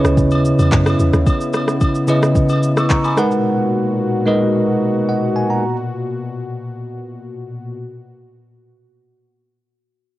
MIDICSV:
0, 0, Header, 1, 5, 480
1, 0, Start_track
1, 0, Key_signature, 5, "minor"
1, 0, Tempo, 545455
1, 1113, Time_signature, 4, 2, 24, 8
1, 8962, End_track
2, 0, Start_track
2, 0, Title_t, "Tine electric piano"
2, 0, Program_c, 0, 4
2, 0, Control_c, 0, 64, 127
2, 0, Note_on_c, 0, 49, 88
2, 0, Note_on_c, 0, 61, 78
2, 0, Note_on_c, 0, 64, 74
2, 0, Note_on_c, 0, 71, 80
2, 0, Note_on_c, 0, 73, 95
2, 0, Note_on_c, 0, 75, 115
2, 681, Note_off_c, 0, 49, 0
2, 683, Note_off_c, 0, 61, 0
2, 685, Note_off_c, 0, 64, 0
2, 687, Note_off_c, 0, 71, 0
2, 689, Note_off_c, 0, 73, 0
2, 1828, Note_on_c, 0, 49, 89
2, 1833, Note_on_c, 0, 61, 82
2, 1837, Note_on_c, 0, 64, 80
2, 1841, Note_on_c, 0, 71, 78
2, 1845, Note_off_c, 0, 75, 0
2, 1845, Note_on_c, 0, 75, 94
2, 2219, Note_off_c, 0, 49, 0
2, 2221, Note_off_c, 0, 61, 0
2, 2223, Note_off_c, 0, 64, 0
2, 2225, Note_off_c, 0, 71, 0
2, 2227, Note_off_c, 0, 75, 0
2, 2442, Note_on_c, 0, 88, 66
2, 2447, Note_on_c, 0, 85, 57
2, 2546, Note_off_c, 0, 85, 0
2, 2549, Note_off_c, 0, 88, 0
2, 2556, Note_on_c, 0, 85, 71
2, 2562, Note_on_c, 0, 82, 63
2, 2674, Note_off_c, 0, 85, 0
2, 2676, Note_off_c, 0, 82, 0
2, 2682, Note_on_c, 0, 83, 68
2, 2687, Note_on_c, 0, 80, 57
2, 2789, Note_on_c, 0, 56, 89
2, 2793, Note_on_c, 0, 63, 81
2, 2798, Note_on_c, 0, 70, 82
2, 2802, Note_on_c, 0, 71, 80
2, 2805, Control_c, 0, 64, 0
2, 2806, Note_on_c, 0, 78, 101
2, 2908, Note_off_c, 0, 83, 0
2, 2911, Note_off_c, 0, 80, 0
2, 2973, Control_c, 0, 64, 127
2, 3561, Note_off_c, 0, 56, 0
2, 3563, Note_off_c, 0, 63, 0
2, 3565, Note_off_c, 0, 70, 0
2, 3567, Note_off_c, 0, 71, 0
2, 3569, Note_off_c, 0, 78, 0
2, 3748, Note_on_c, 0, 56, 87
2, 3753, Note_on_c, 0, 63, 81
2, 3757, Note_on_c, 0, 70, 82
2, 3761, Note_on_c, 0, 71, 79
2, 3765, Note_on_c, 0, 75, 97
2, 4471, Note_off_c, 0, 75, 0
2, 4476, Note_on_c, 0, 78, 67
2, 4481, Note_on_c, 0, 75, 56
2, 4521, Note_off_c, 0, 56, 0
2, 4523, Note_off_c, 0, 63, 0
2, 4525, Note_off_c, 0, 70, 0
2, 4527, Note_off_c, 0, 71, 0
2, 4703, Note_off_c, 0, 78, 0
2, 4706, Note_off_c, 0, 75, 0
2, 4717, Note_on_c, 0, 80, 76
2, 4834, Note_off_c, 0, 80, 0
2, 4841, Note_on_c, 0, 82, 65
2, 4846, Note_on_c, 0, 78, 57
2, 4963, Control_c, 0, 64, 0
2, 5068, Note_off_c, 0, 82, 0
2, 5070, Note_off_c, 0, 78, 0
2, 8962, End_track
3, 0, Start_track
3, 0, Title_t, "Analog synth pad"
3, 0, Program_c, 1, 89
3, 0, Note_on_c, 1, 49, 82
3, 0, Note_on_c, 1, 59, 73
3, 0, Note_on_c, 1, 64, 90
3, 2758, Note_off_c, 1, 49, 0
3, 2758, Note_off_c, 1, 59, 0
3, 2758, Note_off_c, 1, 64, 0
3, 2793, Note_on_c, 1, 46, 78
3, 2793, Note_on_c, 1, 47, 77
3, 2793, Note_on_c, 1, 66, 89
3, 6838, Note_off_c, 1, 46, 0
3, 6838, Note_off_c, 1, 47, 0
3, 6838, Note_off_c, 1, 66, 0
3, 8962, End_track
4, 0, Start_track
4, 0, Title_t, "Log drum bass"
4, 0, Program_c, 2, 39
4, 38, Note_on_c, 2, 37, 98
4, 151, Note_on_c, 2, 39, 92
4, 164, Note_off_c, 2, 37, 0
4, 466, Note_off_c, 2, 39, 0
4, 518, Note_on_c, 2, 40, 89
4, 617, Note_off_c, 2, 40, 0
4, 635, Note_on_c, 2, 42, 98
4, 841, Note_off_c, 2, 42, 0
4, 873, Note_on_c, 2, 40, 90
4, 981, Note_off_c, 2, 40, 0
4, 998, Note_on_c, 2, 39, 92
4, 1097, Note_off_c, 2, 39, 0
4, 8962, End_track
5, 0, Start_track
5, 0, Title_t, "Drums"
5, 41, Note_on_c, 9, 37, 99
5, 42, Note_on_c, 9, 82, 55
5, 129, Note_off_c, 9, 37, 0
5, 130, Note_off_c, 9, 82, 0
5, 151, Note_on_c, 9, 36, 112
5, 153, Note_on_c, 9, 82, 80
5, 239, Note_off_c, 9, 36, 0
5, 241, Note_off_c, 9, 82, 0
5, 272, Note_on_c, 9, 82, 47
5, 279, Note_on_c, 9, 67, 75
5, 360, Note_off_c, 9, 82, 0
5, 367, Note_off_c, 9, 67, 0
5, 396, Note_on_c, 9, 82, 101
5, 484, Note_off_c, 9, 82, 0
5, 518, Note_on_c, 9, 82, 58
5, 519, Note_on_c, 9, 67, 72
5, 606, Note_off_c, 9, 82, 0
5, 607, Note_off_c, 9, 67, 0
5, 631, Note_on_c, 9, 82, 91
5, 633, Note_on_c, 9, 39, 102
5, 635, Note_on_c, 9, 36, 100
5, 719, Note_off_c, 9, 82, 0
5, 721, Note_off_c, 9, 39, 0
5, 723, Note_off_c, 9, 36, 0
5, 756, Note_on_c, 9, 37, 98
5, 759, Note_on_c, 9, 67, 72
5, 760, Note_on_c, 9, 82, 49
5, 844, Note_off_c, 9, 37, 0
5, 847, Note_off_c, 9, 67, 0
5, 848, Note_off_c, 9, 82, 0
5, 873, Note_on_c, 9, 82, 85
5, 961, Note_off_c, 9, 82, 0
5, 996, Note_on_c, 9, 82, 52
5, 997, Note_on_c, 9, 37, 87
5, 1084, Note_off_c, 9, 82, 0
5, 1085, Note_off_c, 9, 37, 0
5, 1112, Note_on_c, 9, 67, 71
5, 1114, Note_on_c, 9, 36, 112
5, 1114, Note_on_c, 9, 82, 56
5, 1200, Note_off_c, 9, 67, 0
5, 1202, Note_off_c, 9, 36, 0
5, 1202, Note_off_c, 9, 82, 0
5, 1239, Note_on_c, 9, 82, 62
5, 1327, Note_off_c, 9, 82, 0
5, 1348, Note_on_c, 9, 82, 84
5, 1351, Note_on_c, 9, 67, 74
5, 1356, Note_on_c, 9, 37, 89
5, 1436, Note_off_c, 9, 82, 0
5, 1439, Note_off_c, 9, 67, 0
5, 1444, Note_off_c, 9, 37, 0
5, 1477, Note_on_c, 9, 37, 90
5, 1481, Note_on_c, 9, 82, 55
5, 1565, Note_off_c, 9, 37, 0
5, 1569, Note_off_c, 9, 82, 0
5, 1591, Note_on_c, 9, 82, 66
5, 1593, Note_on_c, 9, 67, 72
5, 1595, Note_on_c, 9, 36, 96
5, 1679, Note_off_c, 9, 82, 0
5, 1681, Note_off_c, 9, 67, 0
5, 1683, Note_off_c, 9, 36, 0
5, 1715, Note_on_c, 9, 82, 59
5, 1803, Note_off_c, 9, 82, 0
5, 1827, Note_on_c, 9, 82, 90
5, 1834, Note_on_c, 9, 67, 71
5, 1915, Note_off_c, 9, 82, 0
5, 1922, Note_off_c, 9, 67, 0
5, 1960, Note_on_c, 9, 37, 99
5, 1961, Note_on_c, 9, 82, 53
5, 2048, Note_off_c, 9, 37, 0
5, 2049, Note_off_c, 9, 82, 0
5, 2071, Note_on_c, 9, 36, 117
5, 2072, Note_on_c, 9, 82, 80
5, 2159, Note_off_c, 9, 36, 0
5, 2160, Note_off_c, 9, 82, 0
5, 2191, Note_on_c, 9, 82, 46
5, 2198, Note_on_c, 9, 67, 79
5, 2279, Note_off_c, 9, 82, 0
5, 2286, Note_off_c, 9, 67, 0
5, 2316, Note_on_c, 9, 82, 98
5, 2404, Note_off_c, 9, 82, 0
5, 2438, Note_on_c, 9, 67, 71
5, 2438, Note_on_c, 9, 82, 58
5, 2439, Note_on_c, 9, 37, 94
5, 2526, Note_off_c, 9, 67, 0
5, 2526, Note_off_c, 9, 82, 0
5, 2527, Note_off_c, 9, 37, 0
5, 2551, Note_on_c, 9, 82, 92
5, 2552, Note_on_c, 9, 39, 99
5, 2555, Note_on_c, 9, 36, 98
5, 2639, Note_off_c, 9, 82, 0
5, 2640, Note_off_c, 9, 39, 0
5, 2643, Note_off_c, 9, 36, 0
5, 2679, Note_on_c, 9, 67, 74
5, 2680, Note_on_c, 9, 82, 48
5, 2767, Note_off_c, 9, 67, 0
5, 2768, Note_off_c, 9, 82, 0
5, 2793, Note_on_c, 9, 37, 95
5, 2793, Note_on_c, 9, 82, 88
5, 2881, Note_off_c, 9, 37, 0
5, 2881, Note_off_c, 9, 82, 0
5, 2916, Note_on_c, 9, 82, 55
5, 3004, Note_off_c, 9, 82, 0
5, 8962, End_track
0, 0, End_of_file